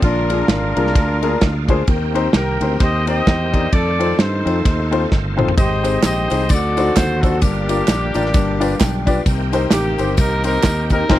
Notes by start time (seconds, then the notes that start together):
0.02 A#1 A#2 D3 G#3 A#3 D4 F4 A#4, kick, ride
0.30 A#3 D4 F4 G#4 A#4, ride
0.48 G#1 D4 F4 A#4, snare, ride
0.76 C2 A#3 D4 F4 G#4 A#4, ride
0.87 snare
0.95 D2, kick, snare, ride
1.22 A#3 D4 F4 G#4 A#4, ride
1.41 D2, kick, snare, ride
1.69 A#3 D4 F4 G#4 C5, kick, ride
1.87 D#2 D#3 C4 G4, kick, ride
2.14 C4 D#4 G4 A#4 C5, ride
2.33 C2 G4 A#4, snare, ride
2.61 D2 C4 D#4 G4 A#4 C5, ride
2.80 D#2 G4 C5 D#5, kick, snare, ride
3.06 C4 D#4 G4 A#4 C5 D#5, ride
3.27 E2, kick, snare, ride
3.52 C4 D#4 G4 A#4 D5, kick, ride
3.72 F2 D#3 A3 F4 A4 D5, kick, ride
3.99 C4 D#4 F4 A4 C5, ride
4.19 G2 D#4 A4 C5, snare, ride
4.45 F2 C4 D#4 F4 A4 C5, ride
4.65 D#2, kick, snare, ride
4.91 C4 D#4 F4 A4 C5, ride
5.12 G1, kick, snare
5.37 C4 D#4 F4 A4 C5, mid tom
5.48 floor tom
5.57 G#1 G#2 G#3 C4 G4 C5 D#5, kick, ride, tambourine
5.83 C4 D#4 G4 G#4 C5, ride, tambourine
6.03 A#1 G4 C5 D#5, snare, clap, ride, tambourine
6.30 C2 C4 D#4 G4 G#4 C5, ride, tambourine
6.49 D2 D3 F#3 C4 D#4 F#4 A4 D5, kick, ride, tambourine
6.77 D4 D#4 F#4 A4 C5, ride, tambourine
6.94 D#2 C5, kick, snare, clap, ride, tambourine
7.21 D4 D#4 F#4 A4 C5, kick, ride, tambourine
7.40 G1 G2 G3 A#3 D4 F4 G4, kick, ride, tambourine
7.69 D4 F4 G4 A#4 D5, ride, tambourine
7.88 A#1, snare, clap, ride, tambourine
8.14 A1 D4 F4 G4 A#4 D5, ride, tambourine
8.26 snare
8.34 G1 G2 B2 G3, kick, snare, ride, tambourine
8.60 D4 F4 G4 B4 D5 F5, ride, tambourine
8.80 B1 G5, kick, snare, clap, ride, tambourine
9.06 D4 F4 G4 B4 D5, kick, ride, tambourine
9.26 C2 C3 D#3 A#3 C4 G4, kick, ride, tambourine
9.53 C4 D#4 G4 A#4 C5, ride, tambourine
9.71 A1 A#3 D#4 G4, snare, clap, ride, tambourine
9.98 G1 C4 D#4 G4 A#4 C5, ride, tambourine
10.17 C2 D#4 G4 A#4, kick, snare, ride, tambourine
10.44 C4 D#4 G4 A#4 C5, ride, tambourine
10.63 D#2, kick, snare, clap, ride, tambourine
10.90 C4 D#4 G4 A#4 D#5, kick, ride, tambourine
11.09 F1 C4 D#4 F4 A#4 C5, kick, snare, crash